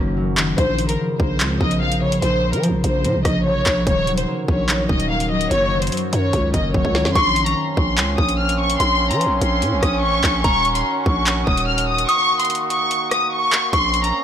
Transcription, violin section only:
0.58 C5
0.89 A#4
1.19 C5
1.61 D#5
1.81 F5
2.03 C#5
2.22 C5
2.53 A#4
2.83 C5
3.25 D#5
3.45 C#5
3.87 C#5
4.17 C5
4.48 C#5
4.89 D#5
5.10 F5
5.31 D#5
5.51 C#5
5.82 C5
6.13 C#5
6.55 D#5
6.75 C#5
7.15 C6
7.46 A#5
7.77 C6
8.18 D#6
8.39 F6
8.60 C#6
8.80 C6
9.10 A#5
9.41 C6
9.82 D#6
10.02 C#6
10.44 C#6
10.75 C6
11.06 C#6
11.47 D#6
11.68 F6
11.88 D#6
12.09 C#6
12.40 C6
12.71 C#6
13.12 D#6
13.32 C#6
13.73 C6
14.04 A#5

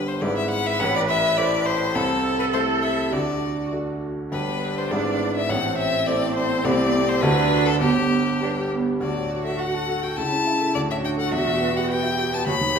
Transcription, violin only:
0.08 C5
0.22 D5
0.38 E5
0.51 F#5
0.67 E5
0.80 F#5
0.96 D5
1.09 E5
1.37 D5
1.66 C5
1.95 A4
2.39 B4
2.53 C5
2.82 E5
3.13 D5
4.32 B4
4.78 C5
4.91 D5
5.36 E5
5.50 F#5
5.78 E5
6.06 D5
6.36 C5
6.65 D5
7.09 C5
7.21 B4
7.66 A4
7.80 G4
9.01 D5
9.45 E5
9.59 F#5
10.03 G5
10.16 A5
10.75 D5
10.91 E5
11.04 G5
11.20 F#5
11.34 E5
11.77 F#5
11.90 G5
12.34 A5
12.47 B5

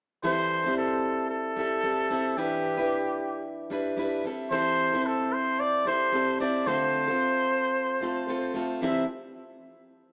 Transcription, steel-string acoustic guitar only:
0.23 C3 E3 G3 C4 E4 A4
0.64 G3 C4 E4 A4
1.56 G3 C4 E4 A4
1.83 G3 C4 E4 A4
2.10 G3 C4 E4 A4
2.37 E3 G3 D4 E4 B4
2.77 D4 E4 B4
3.70 G3 D4 E4 B4
3.97 G3 D4 E4 B4
4.24 G3 C4 E4 A4
4.51 E3 G3 C4 E4 A4
4.93 C4 E4 A4
5.85 G3 C4 E4 A4
6.12 G3 C4 E4 A4
6.39 G3 C4 E4 A4
6.66 D3 A3 C4 F4 A4
7.08 C4 F4 A4
8.01 A3 C4 F4 A4
8.27 A3 C4 F4 A4
8.54 A3 C4 F4 A4
8.81 C3 E3 G3 C4 E4 A4

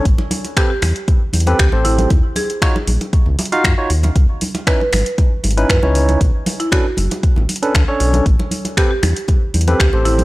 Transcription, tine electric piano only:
0.57 C4 G4 A4 B4
1.47 C4 G4 A4 B4
1.73 C4 G4 A4 C5
2.62 D#4 F4 F#4 C#5
3.52 D#4 F4 F#4 F5
3.78 D#4 F4 F#4 C#5
4.67 C#4 D#4 E4 B4
5.57 C#4 D#4 E4 B4
5.83 C#4 D#4 E4 C#5
6.72 C#4 D4 A4 B4
7.62 C#4 D4 A4 B4
7.88 C#4 D4 A4 C#5
8.77 C4 G4 A4 B4
9.68 C4 G4 A4 B4
9.93 C4 G4 A4 C5

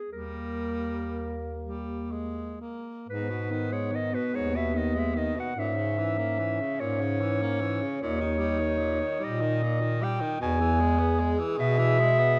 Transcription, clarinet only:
Already playing: G#4
0.12 A#4
3.10 B4
3.73 C#5
3.95 D#5
4.14 B4
4.36 C#5
4.56 E5
4.77 D#5
4.99 E5
5.18 D#5
5.40 F#5
5.59 E5
6.80 C#5
8.03 C#5
9.24 D#5
10.03 G5
10.42 G#5
11.60 E5

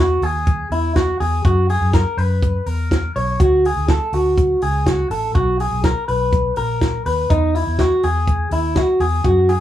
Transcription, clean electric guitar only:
0.00 F#4
0.23 G#4
0.72 E4
0.96 F#4
1.20 G#4
1.45 F#4
1.70 G#4
1.94 A#4
2.18 B4
2.66 A#4
3.16 C#5
3.40 F#4
3.66 G#4
3.90 A4
4.14 F#4
4.63 G#4
4.86 F#4
5.11 A4
5.35 F#4
5.61 G#4
5.85 A#4
6.08 B4
6.57 A#4
7.06 B4
7.30 D#4
7.55 E4
7.79 F#4
8.04 G#4
8.53 E4
8.77 F#4
9.01 G#4
9.25 F#4
9.49 G#4

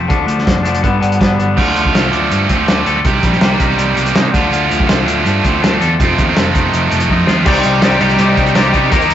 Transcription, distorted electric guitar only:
1.56 D3 A3 D4 F4
3.04 C3 D#3 G3 C4 G4
4.34 D3 A3 D4 F4
6.00 F2 C3 F3 A3 C4 F4
7.46 C3 D#3 G3 D#4 G4
7.83 C3 D#3 G3 D#4 G4
8.00 C3 D#3 G3 D#4 G4
8.20 C3 D#3 G3 D#4 G4
8.57 C3 D#3 G3 D#4 G4
8.73 C3 D#3 G3 D#4 G4
8.92 D#3 A#3 D#4 G4

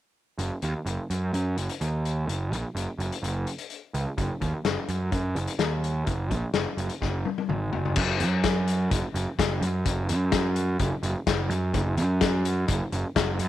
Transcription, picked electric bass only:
0.38 F#1
0.63 D#2
0.86 F#1
1.10 F#2
1.33 F#2
1.57 F#1
1.81 D#2
2.28 F#1
2.52 A#1
2.75 F#1
2.99 F#1
3.23 F#1
3.94 C#2
4.18 F#1
4.41 D#2
4.65 F#1
4.89 F#2
5.12 F#2
5.36 F#1
5.59 D#2
6.07 F#1
6.31 A#1
6.54 F#1
6.77 F#1
7.02 F#1
7.49 G#1
7.73 F#1
7.97 F#1
8.20 F#2
8.91 F#1
9.14 F#1
9.39 F#1
9.61 F#2
9.86 F#1
10.09 F#2
10.79 F#1
11.03 F#1
11.27 F#1
11.49 F#2
11.74 F#1
11.97 F#2
12.68 F#1
12.92 F#1
13.16 F#1
13.39 F#2

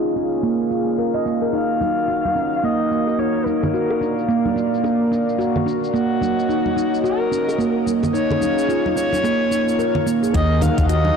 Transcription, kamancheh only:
1.55 F5
2.64 D#5
3.19 C#5
3.46 A#4
5.93 F#4
7.04 A#4
8.14 C#5
8.96 C#5
10.35 D#5
10.62 F5
10.90 D#5

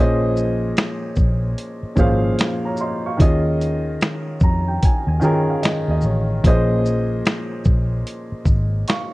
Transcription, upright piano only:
Already playing: A#2 F3 C#4
0.00 G#4 C5 D#5
1.95 A#2 F3 C#4 G#4 C5
2.00 F5
2.65 C#5 A#5
2.81 D#5 C6
3.06 F5 C#6
3.17 D#3 C#4 F4 G#4
3.21 D#5
4.44 A#5
4.68 G5
4.85 G#5
5.08 G#5
5.20 D#3 C#4 F4 G#4 G5
5.24 A#4
5.50 F5
5.63 D#5
5.91 D#5
6.04 C#5
6.44 A#2 F3 C#4 G#4 C5
6.48 D#5
8.88 F5 C#6

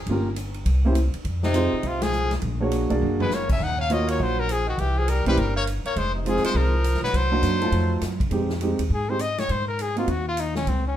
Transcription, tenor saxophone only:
1.44 C3
1.85 C3
2.04 F3
3.22 G#3
3.33 A#3
3.50 C#4
3.62 D#4
3.78 C#4
3.92 A#3
4.07 A#3
4.21 F#3
4.38 F#3
4.49 F3
4.66 D#3
4.79 E3
4.98 F3
5.09 G3
5.28 G3
5.40 G3
5.56 A#3
5.86 A#3
5.97 G#3
6.15 C3
6.29 F3
6.44 G#3
6.56 F3
7.04 F#3
7.16 F#3

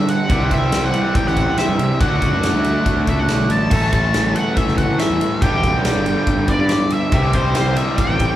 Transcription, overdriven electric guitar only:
Already playing: G2 D3 G3 B3 D4 G4
0.29 C3 E3 G3 C4 G4
2.00 D3 A3 D4 F#4
3.71 A2 E3 A3 C#4 A4
5.41 G2 D3 G3 B3 D4 G4
7.11 C3 E3 G3 C4 G4

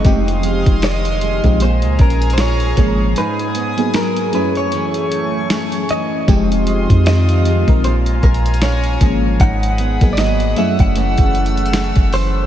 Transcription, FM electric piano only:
0.04 F3 G#3 C4 D#4 G4
1.43 F3 G#3 C4 D#4 G4
2.77 F3 G#3 A#3 C#4 G#4
3.77 F#3 A#3 B3 D#4 G#4
4.33 F#3 A3 C#4 E4 G#4
6.27 F3 G#3 C4 D#4 G4
7.67 F3 G#3 C4 D#4 A#4
9.00 F3 G#3 A#3 C#4 G#4
10.01 F#3 A#3 B3 D#4 G#4
10.56 F#3 A3 C#4 E4 G#4

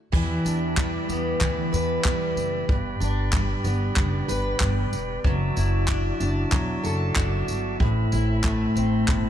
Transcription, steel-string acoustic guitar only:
0.12 E3
0.45 D4
0.76 G3
1.09 B3
1.40 E3
1.72 B4
2.04 G3
2.69 G2
3.00 D4
3.33 G3
3.64 B3
4.28 B4
4.60 G3
5.24 F#3
5.56 E4
5.88 D4
6.20 D4
6.51 F#3
6.84 A4
7.17 D4
7.80 A2
8.12 E4
8.44 A3
8.75 C4
9.08 A2

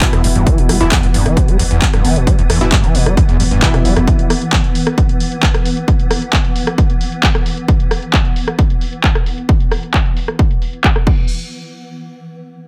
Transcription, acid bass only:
0.01 E2
0.13 E2
0.24 G2
0.35 G2
0.47 E3
0.58 B2
0.69 G3
0.81 E2
0.92 E2
1.03 G2
1.14 G2
1.26 E3
1.37 B2
1.48 G3
1.59 E2
1.71 E2
1.82 G2
1.93 G2
2.05 E3
2.16 B2
2.27 G3
2.39 E2
2.50 E2
2.61 G2
2.72 G2
2.84 E3
2.95 B2
3.06 G3
3.17 E2
3.29 E2
3.40 G2
3.51 G2
3.62 E3
3.74 B2
3.85 G3
3.96 E2

